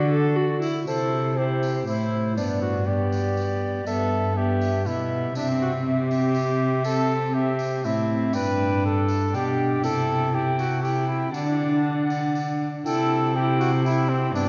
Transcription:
Already playing: D3 F#4 D5
0.11 A4
0.36 F#4
0.61 E4, tambourine
0.87 C3 E4 A4 C5, tambourine
1.37 E4 G4 C5
1.63 tambourine
1.87 A2 E4 C5, tambourine
2.37 G2 B3 D4 D5, tambourine
2.61 F#4
2.87 B3 G4 D5
3.12 tambourine
3.37 tambourine
3.86 G2 B3 A4 E5, tambourine
4.36 B3 G4 E5
4.61 tambourine
4.86 B2 B3 E4 E5, tambourine
5.35 C3 C4 D4 E5, tambourine
5.62 F#4
5.86 C4 G4 E5
6.11 tambourine
6.35 tambourine
6.84 A4, tambourine
7.33 C4 G4 E5
7.59 tambourine
7.84 A2 C4 E4 E5, tambourine
8.33 G2 D4 B4 G5, tambourine
8.85 A4
9.08 tambourine
9.33 B2 D4 G4 G5, tambourine
9.83 C3 E4 A4 G5, tambourine
10.34 E4 G4 G5
10.59 F#4, tambourine
10.83 E4 G4 G5, tambourine
11.08 E4
11.32 D3 D4 F#5, tambourine
12.10 tambourine
12.35 tambourine
12.85 C3 E4 A4 G5, tambourine
13.35 E4 G4 G5
13.60 F#4, tambourine
13.84 E4 G5, tambourine
14.09 C4
14.34 G2 B3 D4 G5, tambourine

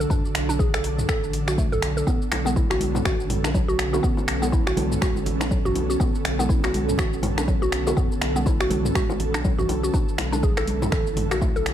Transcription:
Already playing: D3 F#3 D4 A4
0.00 A4, shaker
0.10 D4, kick, mid tom, shaker
0.25 shaker
0.35 B1, finger snap, open hi-hat
0.49 D4, shaker
0.59 G#4, kick, shaker
0.74 B1 A4, finger snap, open hi-hat, shaker
0.84 open hi-hat
0.98 mid tom, shaker
1.09 A1 A4, finger snap, kick, shaker
1.24 shaker
1.33 open hi-hat
1.48 B1 F#4, finger snap, shaker
1.58 A3, kick, shaker
1.72 B1 A4, mid tom, shaker
1.82 finger snap, open hi-hat
1.97 A4, shaker
2.07 B3 C#4 A4, kick, low bongo, shaker
2.22 shaker
2.32 B1, finger snap, open hi-hat, low bongo
2.45 B3, high bongo, high conga, shaker
2.56 E4, kick, shaker
2.70 B1 F#4, finger snap, low bongo, shaker
2.81 open hi-hat, high conga
2.95 mid tom, low bongo, shaker
3.05 A1 F#4, finger snap, kick, low conga, shaker
3.20 shaker
3.30 mid tom, open hi-hat, low bongo, high conga
3.44 B1 D4, finger snap, high bongo, shaker
3.54 F#3, kick, low bongo, shaker
3.68 B1 F#4, shaker
3.79 finger snap, open hi-hat
3.93 F#4, high bongo, low bongo, shaker
4.03 B3, kick, shaker
4.17 low bongo, shaker
4.28 B1, finger snap, open hi-hat
4.42 B3, high bongo, high conga, shaker
4.52 E4, kick, low bongo, shaker
4.67 B1 F#4, finger snap, shaker
4.77 open hi-hat, low bongo, high conga, low conga
4.92 mid tom, shaker
5.02 A1 F#4, finger snap, kick, high conga, shaker
5.16 low bongo, shaker
5.26 open hi-hat, low conga
5.40 B1 D4, finger snap, low bongo, shaker
5.51 F#3, kick, shaker
5.65 B1 F#4, mid tom, low conga, shaker
5.75 open hi-hat, low bongo
5.90 F#4, shaker
6.00 B3, kick, low bongo, shaker
6.15 shaker
6.25 B1, finger snap, open hi-hat
6.39 B3, high bongo, low bongo, high conga, shaker
6.49 E4, kick, shaker
6.64 B1 F#4, finger snap, low bongo, shaker
6.74 open hi-hat, high conga
6.89 mid tom, shaker
6.98 A1 F#4, finger snap, kick, low bongo, low conga, shaker
7.13 shaker
7.23 mid tom, open hi-hat, low bongo, high conga
7.38 B1 D4, finger snap, high bongo, shaker
7.48 F#3, kick, shaker
7.62 B1 F#4, low bongo, shaker
7.72 finger snap, open hi-hat
7.87 F#4, high bongo, low bongo, shaker
7.97 B3, kick, mid tom, shaker
8.12 shaker
8.21 B1, finger snap, open hi-hat, low bongo
8.36 B3, high bongo, high conga, shaker
8.46 E4, kick, low bongo, shaker
8.60 B1 F#4, finger snap, shaker
8.70 open hi-hat, high conga, low conga
8.85 mid tom, low bongo, shaker
8.95 A1 F#4, finger snap, kick, high conga, shaker
9.09 low bongo, shaker
9.20 open hi-hat, low conga
9.34 B1 D4, finger snap, shaker
9.44 F#3, kick, low bongo, shaker
9.59 B1 F#4, mid tom, low conga, shaker
9.69 open hi-hat, low bongo
9.83 F#4, shaker
9.93 D3 F#3 D4 E4, kick, low bongo, shaker
10.09 shaker
10.18 B1, finger snap, open hi-hat, low bongo
10.32 D4, high bongo, high conga, shaker
10.43 G#4, kick, shaker
10.57 B1 A4, finger snap, low bongo, shaker
10.67 open hi-hat, high conga
10.82 mid tom, low bongo, shaker
10.92 A1 A4, finger snap, kick, low conga, shaker
11.07 shaker
11.16 mid tom, open hi-hat, low bongo, high conga
11.31 B1 F#4, finger snap, high bongo, shaker
11.41 A3, kick, low bongo, shaker
11.56 B1 A4, shaker
11.66 finger snap, open hi-hat

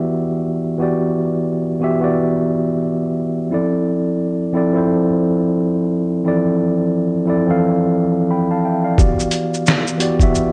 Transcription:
Already playing: E3 B3 F#4 G4 D5 E5
0.78 E3 B3 F#4 G4
0.82 D5
1.80 E3 B3 F#4 G4
1.84 E5
2.00 E3 B3 F#4 G4
2.04 D5
3.50 F3 C4 E4 A4
3.54 D5
4.53 F3 C4 E4 A4
4.57 D5
4.73 F3 C4 E4 A4
4.77 C5
6.24 E3 C4 E4 A4
6.28 F3 D5
7.26 F3 C4 E4 A4
7.30 D5
7.46 E3 F3 C4 A4
7.51 F5
8.31 G5 B5
8.51 F5 A5
8.65 E5 G5
8.84 D5 F5
8.96 E3 B3 F#4 G4, kick, shaker
9.00 D5
9.20 shaker
9.31 closed hi-hat, shaker
9.54 shaker
9.67 snare, shaker
9.87 shaker
9.98 E3 B3 F#4 G4, closed hi-hat, shaker
10.02 D5
10.19 E3 B3 F#4 G4 E5, kick, shaker
10.35 shaker

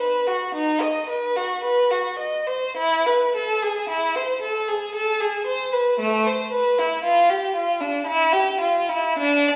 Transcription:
0.00 B4
0.27 F#4
0.54 D#4
0.81 D#5
1.09 B4
1.36 F#4
1.64 B4
1.91 F#4
2.19 D#5
2.47 C5
2.77 E4
3.06 B4
3.36 A4
3.63 G#4
3.89 E4
4.16 C5
4.41 A4
4.68 G#4
4.95 A4
5.21 G#4
5.47 C5
5.73 B4
6.00 A3
6.27 C5
6.52 B4
6.79 E4
7.04 F4
7.30 G4
7.55 F4
7.81 D4
8.07 E4
8.33 G4
8.61 F4
8.89 E4
9.18 D4
9.49 D5

